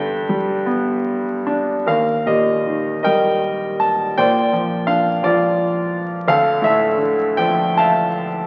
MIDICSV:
0, 0, Header, 1, 2, 480
1, 0, Start_track
1, 0, Tempo, 783290
1, 1143, Time_signature, 6, 3, 24, 8
1, 2102, Tempo, 712589
1, 4502, Tempo, 760456
1, 5433, End_track
2, 0, Start_track
2, 0, Title_t, "Grand piano"
2, 0, Program_c, 0, 0
2, 0, Control_c, 0, 64, 127
2, 0, Note_on_c, 0, 43, 67
2, 0, Note_on_c, 0, 50, 55
2, 0, Note_on_c, 0, 71, 69
2, 0, Note_on_c, 0, 79, 87
2, 178, Note_on_c, 0, 55, 59
2, 406, Note_on_c, 0, 59, 59
2, 868, Note_off_c, 0, 79, 0
2, 874, Note_off_c, 0, 71, 0
2, 875, Note_off_c, 0, 50, 0
2, 898, Note_on_c, 0, 62, 61
2, 1117, Note_off_c, 0, 59, 0
2, 1119, Note_off_c, 0, 55, 0
2, 1120, Note_off_c, 0, 43, 0
2, 1135, Note_off_c, 0, 62, 0
2, 1142, Note_on_c, 0, 70, 52
2, 1145, Note_on_c, 0, 39, 51
2, 1149, Note_on_c, 0, 77, 70
2, 1150, Control_c, 0, 64, 0
2, 1276, Control_c, 0, 64, 127
2, 1375, Note_off_c, 0, 70, 0
2, 1385, Note_on_c, 0, 70, 43
2, 1387, Note_on_c, 0, 46, 40
2, 1389, Note_on_c, 0, 67, 44
2, 1390, Note_on_c, 0, 75, 62
2, 1397, Note_off_c, 0, 77, 0
2, 1635, Note_on_c, 0, 51, 41
2, 1846, Note_off_c, 0, 75, 0
2, 1853, Note_off_c, 0, 70, 0
2, 1856, Note_on_c, 0, 75, 53
2, 1862, Note_on_c, 0, 70, 56
2, 1865, Note_on_c, 0, 79, 80
2, 1874, Note_on_c, 0, 55, 45
2, 2077, Note_off_c, 0, 67, 0
2, 2323, Note_off_c, 0, 46, 0
2, 2350, Note_on_c, 0, 81, 73
2, 2364, Note_off_c, 0, 79, 0
2, 2559, Note_off_c, 0, 75, 0
2, 2563, Note_off_c, 0, 70, 0
2, 2566, Note_off_c, 0, 39, 0
2, 2569, Note_off_c, 0, 51, 0
2, 2574, Note_off_c, 0, 55, 0
2, 2599, Note_off_c, 0, 81, 0
2, 2601, Control_c, 0, 64, 0
2, 2604, Note_on_c, 0, 79, 86
2, 2606, Note_on_c, 0, 74, 60
2, 2608, Note_on_c, 0, 72, 59
2, 2609, Note_on_c, 0, 46, 60
2, 2729, Control_c, 0, 64, 127
2, 2840, Note_on_c, 0, 53, 49
2, 3048, Note_off_c, 0, 79, 0
2, 3071, Note_on_c, 0, 77, 75
2, 3076, Note_on_c, 0, 62, 47
2, 3286, Note_off_c, 0, 74, 0
2, 3287, Note_off_c, 0, 72, 0
2, 3303, Note_off_c, 0, 53, 0
2, 3313, Note_on_c, 0, 53, 51
2, 3315, Note_off_c, 0, 77, 0
2, 3321, Note_on_c, 0, 74, 81
2, 3330, Note_on_c, 0, 65, 59
2, 3819, Note_off_c, 0, 74, 0
2, 3993, Note_off_c, 0, 62, 0
2, 3997, Note_off_c, 0, 46, 0
2, 3998, Note_off_c, 0, 53, 0
2, 4001, Note_off_c, 0, 65, 0
2, 4019, Note_on_c, 0, 38, 66
2, 4023, Note_on_c, 0, 77, 93
2, 4026, Control_c, 0, 64, 0
2, 4036, Note_on_c, 0, 69, 69
2, 4130, Control_c, 0, 64, 127
2, 4249, Note_on_c, 0, 45, 54
2, 4264, Note_on_c, 0, 76, 88
2, 4265, Note_off_c, 0, 77, 0
2, 4274, Note_off_c, 0, 69, 0
2, 4284, Note_on_c, 0, 69, 59
2, 4493, Note_on_c, 0, 50, 47
2, 4741, Note_on_c, 0, 79, 87
2, 4746, Note_on_c, 0, 53, 57
2, 4754, Note_off_c, 0, 76, 0
2, 4962, Note_off_c, 0, 79, 0
2, 4964, Note_off_c, 0, 69, 0
2, 4995, Note_on_c, 0, 81, 82
2, 5003, Note_on_c, 0, 77, 58
2, 5011, Note_on_c, 0, 76, 59
2, 5190, Note_off_c, 0, 45, 0
2, 5432, Note_off_c, 0, 50, 0
2, 5433, Note_off_c, 0, 38, 0
2, 5433, Note_off_c, 0, 53, 0
2, 5433, Note_off_c, 0, 76, 0
2, 5433, Note_off_c, 0, 77, 0
2, 5433, Note_off_c, 0, 81, 0
2, 5433, End_track
0, 0, End_of_file